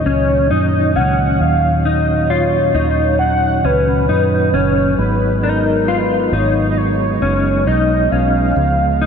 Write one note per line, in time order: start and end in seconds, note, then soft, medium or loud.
0.00 4.95 A#2 soft
0.00 4.95 D#3 medium
0.00 8.53 F#3 medium
0.00 4.95 C#4 medium
0.06 0.49 C#2 medium
0.06 0.50 C#4 medium
0.06 0.53 C#5 loud
0.51 0.97 F#2 medium
0.51 0.95 D#4 medium
0.51 0.97 D#5 loud
0.95 1.38 C#2 medium
0.95 1.41 C#4 medium
0.95 1.42 F#5 loud
1.40 2.71 D#2 medium
1.40 1.87 F5 loud
1.85 2.30 D#4 medium
1.85 2.31 D#5 medium
2.30 2.75 F4 medium
2.30 3.19 C#5 medium
2.75 3.60 D#2 medium
2.75 3.64 D#4 medium
3.19 3.66 F#5 loud
3.64 4.07 C#2 medium
3.64 4.09 C#4 medium
3.64 4.56 B4 loud
4.09 4.52 F#2 medium
4.09 4.53 D#4 medium
4.54 4.96 F#1 medium
4.54 4.99 C#4 medium
4.54 4.98 C#5 medium
4.98 6.29 G#1 loud
4.98 9.06 G#3 medium
4.98 8.53 B3 medium
4.98 8.53 D#4 medium
4.98 5.45 B4 medium
5.43 5.88 D#4 medium
5.43 5.89 A#4 medium
5.88 6.33 F4 medium
5.88 6.34 B4 medium
6.32 7.18 G#1 loud
6.32 7.22 D#4 medium
6.32 6.70 C#5 medium
6.71 6.79 D#5 medium
6.77 7.69 C#5 loud
7.22 7.65 F#1 medium
7.22 7.67 C#4 medium
7.67 8.10 B1 medium
7.67 8.12 D#4 medium
7.67 8.13 D#5 medium
8.11 8.55 B1 medium
8.11 8.57 C#4 medium
8.11 9.06 F5 loud
8.56 9.06 C#2 medium
8.56 9.06 C#3 medium
8.56 9.06 F3 medium
8.56 9.06 B3 medium
9.02 9.06 D#4 medium